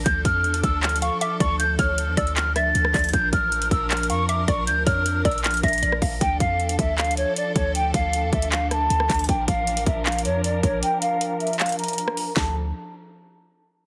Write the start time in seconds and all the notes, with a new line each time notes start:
Already playing: D4
0.06 D2 F3 A4 G6, kick, closed hi-hat
0.25 F2 F6, kick, closed hi-hat
0.44 E2, closed hi-hat
0.54 closed hi-hat
0.63 D2 E6, kick, closed hi-hat
0.83 F6, clap, closed hi-hat
0.89 closed hi-hat
0.96 closed hi-hat
1.02 F5 C#6, closed hi-hat
1.21 E5 D6, closed hi-hat
1.40 D2 D5 C#6, kick, closed hi-hat
1.59 G6, closed hi-hat
1.79 D2 C#5 F6, kick, closed hi-hat
1.98 closed hi-hat
2.08 E2
2.17 D2 D5 E6, kick, closed hi-hat
2.27 closed hi-hat
2.36 F6, clap, closed hi-hat
2.56 E5 A6, cross-stick, closed hi-hat
2.75 D2, closed hi-hat
2.85 cross-stick
2.94 D2 D5, kick, clap, closed hi-hat, open hi-hat
2.99 closed hi-hat
3.04 closed hi-hat
3.09 closed hi-hat
3.13 A#1 D4 A#4 G6, kick, closed hi-hat
3.33 A1 F6, kick, closed hi-hat
3.52 closed hi-hat
3.62 closed hi-hat
3.71 A#1 E6, kick, closed hi-hat
3.90 F6, clap, closed hi-hat
3.97 closed hi-hat
4.03 closed hi-hat
4.10 F2 F5 C#6, closed hi-hat
4.29 E5 D6, closed hi-hat
4.48 A#1 D5 C#6, kick, closed hi-hat
4.67 D2 G6, closed hi-hat
4.86 F2 C#5 F6, kick, closed hi-hat
5.06 closed hi-hat
5.25 A#1 D5 E6, kick, closed hi-hat
5.31 closed hi-hat
5.38 closed hi-hat
5.44 F6, clap, closed hi-hat
5.51 closed hi-hat
5.54 closed hi-hat
5.57 closed hi-hat
5.63 A#1 E5 A#6, kick, closed hi-hat
5.68 closed hi-hat
5.73 closed hi-hat
5.78 closed hi-hat
5.83 A#1 D5, closed hi-hat
5.92 cross-stick
6.02 A#1 F5, kick, open hi-hat
6.21 D2 F3 D4 A4 G5, kick, closed hi-hat
6.40 F2 F5, kick, closed hi-hat
6.59 E2, closed hi-hat
6.69 closed hi-hat
6.79 D2 E5, kick, closed hi-hat
6.98 F5, clap, closed hi-hat
7.04 closed hi-hat
7.11 closed hi-hat
7.17 C#5, closed hi-hat
7.36 D5, closed hi-hat
7.56 D2 C#5, kick, closed hi-hat
7.75 G5, closed hi-hat
7.94 D2 F5, kick, closed hi-hat
8.13 closed hi-hat
8.23 E2
8.33 D2 E5, kick, closed hi-hat
8.42 closed hi-hat
8.52 F5, clap, closed hi-hat
8.71 A5, cross-stick, closed hi-hat
8.90 D2, closed hi-hat
9.00 cross-stick
9.10 D2, kick, clap, closed hi-hat, open hi-hat
9.14 closed hi-hat
9.19 closed hi-hat
9.24 closed hi-hat
9.29 A#1 A#4 G5, kick, closed hi-hat
9.48 A1 F5, kick, closed hi-hat
9.67 closed hi-hat
9.77 closed hi-hat
9.86 A#1 E5, kick, closed hi-hat
10.06 F5, clap, closed hi-hat
10.12 closed hi-hat
10.19 closed hi-hat
10.25 F2 C#5, closed hi-hat
10.44 D5, closed hi-hat
10.63 A#1 C#5, kick, closed hi-hat
10.83 G5, closed hi-hat
11.01 F5, closed hi-hat
11.21 closed hi-hat
11.40 E5, closed hi-hat
11.47 closed hi-hat
11.53 closed hi-hat
11.59 F5, clap, closed hi-hat
11.66 closed hi-hat
11.69 closed hi-hat
11.72 closed hi-hat
11.79 A#5, closed hi-hat
11.84 closed hi-hat
11.88 closed hi-hat
11.93 closed hi-hat
11.98 closed hi-hat
12.08 cross-stick
12.17 open hi-hat
12.36 D2 F3 D4 A4 A5, kick, snare, clap